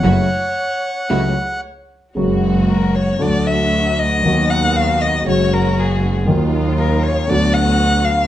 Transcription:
<<
  \new Staff \with { instrumentName = "Bandoneon" } { \time 4/4 \key fis \minor \tempo 4 = 117 fis''2. r4 | \key fis \major r1 | r1 | r1 | }
  \new Staff \with { instrumentName = "Violin" } { \time 4/4 \key fis \minor cis''2. r4 | \key fis \major r4 ais'8 cis''8 d''8 e''4 dis''8~ | dis''8 fis''8 eis''8 dis''8 cis''8 ais'8 gis'8. r16 | r4 ais'8 cis''8 d''8 fis''4 eis''8 | }
  \new Staff \with { instrumentName = "String section" } { \time 4/4 \key fis \minor <a e' fis'>8 r4. <a e' fis'>8 r4. | \key fis \major <gis ais fis'>2 <a d' fis'>2 | <b dis' fis'>2 <gis cis' fis'>2 | <fis dis' eis'>2 <b d' fis'>2 | }
  \new Staff \with { instrumentName = "Grand piano" } { \clef bass \time 4/4 \key fis \minor <fis, cis fis a e'>8 r4. <cis, cis fis a e'>8 r4. | \key fis \major <fis, cis fis gis ais fis'>2 <d, d fis a fis'>2 | <dis, dis fis b fis'>2 <fis, cis fis gis fis'>2 | <dis, dis fis ais eis'>2 <d, d fis b fis'>2 | }
  \new Staff \with { instrumentName = "Double bass" } { \clef bass \time 4/4 \key fis \minor fis,,8 r2. r8 | \key fis \major fis,,2 d,2 | dis,2 fis,,2 | dis,2 d,2 | }
>>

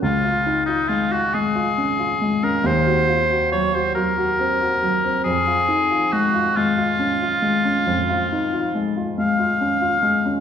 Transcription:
<<
  \new Staff \with { instrumentName = "Oboe" } { \time 12/8 \key cis \mixolydian \tempo 4. = 46 eis'8. dis'16 eis'16 fis'16 gis'4~ gis'16 ais'16 c''4 cis''16 c''16 ais'4. | gis'4 fis'8 eis'2~ eis'8. r16 eis''4. | }
  \new Staff \with { instrumentName = "Grand piano" } { \time 12/8 \key cis \mixolydian cis,16 eis'16 dis'16 eis'16 gis16 eis'16 gis16 eis'16 cis'16 eis'16 gis16 cis'16 ees,16 ges'16 eis'16 ges'16 ges16 ges'16 ges16 ges'16 c'16 ges'16 ges16 c'16 | eis,16 eis'16 dis'16 eis'16 gis16 eis'16 gis16 eis'16 cis'16 eis'16 gis16 cis'16 eis,16 eis'16 dis'16 eis'16 gis16 eis'16 gis16 eis'16 cis'16 eis'16 gis16 cis'16 | }
>>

